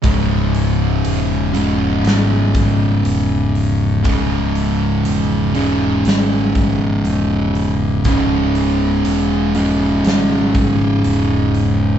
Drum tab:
HH |oooooooo|oooooooo|oooooooo|
SD |----o---|----o---|----o---|
BD |o----o--|o----o--|o----o--|